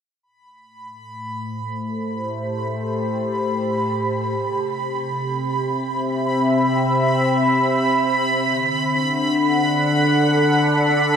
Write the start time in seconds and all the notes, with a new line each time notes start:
0.23 A2 B5
0.30 A3
0.84 C5
1.03 G4
4.33 C3
4.86 C4
5.00 E5
8.44 D3
8.74 F#5
8.81 D4
9.22 A4